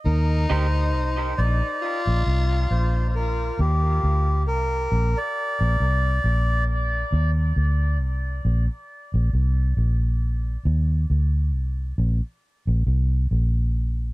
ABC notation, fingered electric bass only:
X:1
M:4/4
L:1/16
Q:"Swing 16ths" 1/4=68
K:Eb
V:1 name="Fingered electric bass" clef=bass
E,,2 D,,2 C,,2 B,,, z2 B,,, C,,2 B,,,4 | E,,2 D,,2 C,,2 B,,, z2 B,,, C,,2 B,,,4 | E,,2 D,,2 C,,2 B,,, z2 B,,, C,,2 B,,,4 | E,,2 D,,2 C,,2 B,,, z2 B,,, C,,2 B,,,4 |]